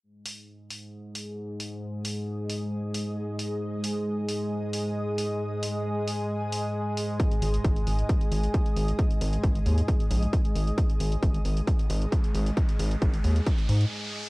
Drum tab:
HH |--o---o---o---o-|--o---o---o---o-|--o---o---o---o-|--o---o---o---o-|
BD |----------------|----------------|----------------|----------------|

HH |xxoxxxoxxxoxxxox|xxoxxxoxxxoxxxox|xxoxxxoxxxoxxxox|xxoxxxoxxxox----|
BD |o---o---o---o---|o---o---o---o---|o---o---o---o---|o---o---o-------|